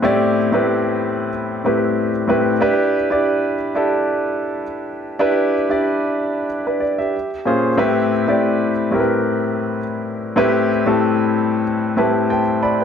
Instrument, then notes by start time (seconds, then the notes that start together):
grand piano
Already playing: A2 B3 C4 E4 G4 B4
0.02 A2 C4 E4 G4 D5
0.52 A2 C4 E4 G4 B4
1.64 A2 C4 E4 G4 B4
2.28 A2 C4 E4 G4 B4
2.61 D4 E4 G4 B4
3.10 D4 E4 G4 D5
3.75 D4 E4 G4 A4
5.19 D4 E4 G4 B4
5.69 D4 E4 G4 D5
6.67 D4 B4
6.80 D5
6.98 G4 E5
7.45 A#2 C#4 F4 G#4 C5
7.77 A2 C4 E4 G4 B4
8.27 A2 C4 E4 G4 D5
8.91 A2 C4 E4 G4 A#4
9.00 B4
10.36 A2 C4 E4 G4 B4
10.86 A2 C4 E4 G4 A4
11.97 A2 C4 E4 G4 B4 A5
12.30 C5 G5 A5
12.63 D5 B5
12.80 B4 G5